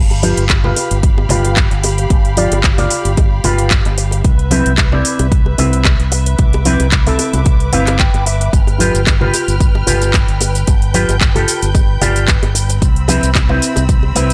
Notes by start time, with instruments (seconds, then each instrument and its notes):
Already playing: fingered electric bass G1, string section G4 F5 B5
0.11 closed hi-hat, high bongo
0.23 clean electric guitar F4 G4 B4, open hi-hat, high conga
0.37 fingered electric bass G1, closed hi-hat
0.49 kick, clap, closed hi-hat, high bongo
0.64 clean electric guitar F4 G4 B4, low conga
0.76 open hi-hat, high bongo
0.91 fingered electric bass G1, closed hi-hat
1.03 kick, closed hi-hat
1.18 high bongo
1.29 fingered electric bass G1, clean electric guitar F4 G4 B4, open hi-hat, low conga
1.44 closed hi-hat, high bongo
1.57 kick, clap, closed hi-hat
1.71 fingered electric bass G1, closed hi-hat
1.83 muted clean electric guitar stroke, open hi-hat, high bongo
1.98 muted clean electric guitar stroke, closed hi-hat
2.10 fingered electric bass G1, kick, closed hi-hat, high bongo
2.25 closed hi-hat
2.37 clean electric guitar F4 G4 D5, open hi-hat, high conga
2.51 fingered electric bass G1, closed hi-hat, high bongo
2.64 kick, clap, closed hi-hat
2.78 clean electric guitar F4 G4 D5, open hi-hat, high bongo, low conga
2.90 open hi-hat
3.05 fingered electric bass G1, closed hi-hat
3.17 kick, closed hi-hat, high bongo
3.44 fingered electric bass G1, clean electric guitar F4 G4 B4, open hi-hat, high bongo, low conga
3.58 closed hi-hat
3.71 kick, clap, closed hi-hat
3.85 fingered electric bass G1, closed hi-hat, high bongo
3.98 muted clean electric guitar stroke, open hi-hat
4.11 muted clean electric guitar stroke, closed hi-hat, high bongo
4.24 fingered electric bass C2, string section B4 E5, kick, closed hi-hat
4.39 closed hi-hat
4.51 clean electric guitar C4 E4 B4, open hi-hat, high bongo, high conga
4.66 fingered electric bass C2, closed hi-hat
4.78 kick, clap, closed hi-hat, high bongo
4.92 clean electric guitar C4 E4 D5, low conga
5.05 open hi-hat
5.19 fingered electric bass C2, closed hi-hat, high bongo
5.32 kick, closed hi-hat
5.46 high bongo
5.58 fingered electric bass C2, clean electric guitar C4 E4 B4, open hi-hat, low conga
5.73 closed hi-hat
5.85 kick, clap, closed hi-hat, high bongo
6.00 fingered electric bass C2, closed hi-hat
6.12 muted clean electric guitar stroke, open hi-hat, high bongo
6.26 muted clean electric guitar stroke, closed hi-hat
6.38 fingered electric bass C2, string section D6, kick, closed hi-hat
6.53 closed hi-hat, high bongo
6.65 clean electric guitar C4 E4 B4, open hi-hat, high conga
6.80 fingered electric bass C2, closed hi-hat, high bongo
6.92 kick, clap, closed hi-hat
7.07 clean electric guitar C4 E4 A4, open hi-hat, low conga
7.19 open hi-hat, high bongo
7.33 fingered electric bass C2, closed hi-hat, low conga
7.45 kick, closed hi-hat, high bongo
7.60 closed hi-hat
7.72 fingered electric bass G1, clean electric guitar C4 E4 B4 F5, open hi-hat, low conga
7.87 clap, closed hi-hat, high bongo
7.99 clean electric guitar G5, kick, clap, closed hi-hat
8.14 fingered electric bass G1, closed hi-hat, high bongo
8.26 clean electric guitar E5, muted clean electric guitar stroke, open hi-hat
8.41 muted clean electric guitar stroke, closed hi-hat
8.53 fingered electric bass G1, string section G5 F6, kick, closed hi-hat, cabasa
8.67 closed hi-hat, high bongo
8.79 clean electric guitar F4 G4 B4, open hi-hat, high conga, cabasa
8.94 fingered electric bass G1, closed hi-hat, cabasa
9.07 kick, clap, closed hi-hat, high bongo, cabasa
9.21 clean electric guitar F4 G4 B4, low conga
9.34 open hi-hat, high bongo, cabasa
9.48 fingered electric bass G1, closed hi-hat, cabasa
9.60 kick, closed hi-hat, cabasa
9.75 high bongo
9.87 fingered electric bass G1, clean electric guitar F4 G4 B4, open hi-hat, low conga, cabasa
10.02 closed hi-hat, high bongo, cabasa
10.14 kick, clap, closed hi-hat, cabasa
10.28 fingered electric bass G1, closed hi-hat
10.41 muted clean electric guitar stroke, open hi-hat, high bongo, cabasa
10.55 muted clean electric guitar stroke, closed hi-hat, cabasa
10.67 fingered electric bass G1, string section G6, kick, closed hi-hat, high bongo, cabasa
10.82 closed hi-hat
10.94 clean electric guitar F4 G4 B4, open hi-hat, high conga, cabasa
11.09 fingered electric bass G1, closed hi-hat, high bongo, cabasa
11.21 kick, clap, closed hi-hat, cabasa
11.35 clean electric guitar F4 G4 A4, open hi-hat, high bongo, low conga
11.48 open hi-hat, cabasa
11.62 fingered electric bass G1, closed hi-hat, cabasa
11.75 kick, closed hi-hat, high bongo, cabasa
12.01 fingered electric bass G1, clean electric guitar F4 G4 D5, open hi-hat, high bongo, low conga, cabasa
12.16 closed hi-hat, cabasa
12.28 kick, clap, closed hi-hat, cabasa
12.43 fingered electric bass G1, closed hi-hat, high bongo
12.55 muted clean electric guitar stroke, open hi-hat, cabasa
12.69 muted clean electric guitar stroke, closed hi-hat, high bongo, cabasa
12.82 fingered electric bass C2, string section C4 B5 E6, kick, closed hi-hat, cabasa
12.96 closed hi-hat
13.08 clean electric guitar C4 E4 B4, open hi-hat, high bongo, high conga, cabasa
13.23 fingered electric bass C2, closed hi-hat, cabasa
13.35 kick, clap, closed hi-hat, high bongo, cabasa
13.49 clean electric guitar C4 E4 B4, low conga
13.62 open hi-hat, cabasa
13.76 fingered electric bass C2, closed hi-hat, high bongo, cabasa
13.89 kick, closed hi-hat, cabasa
14.03 high bongo
14.15 fingered electric bass C2, clean electric guitar C4 E4 B4, open hi-hat, low conga, cabasa
14.30 closed hi-hat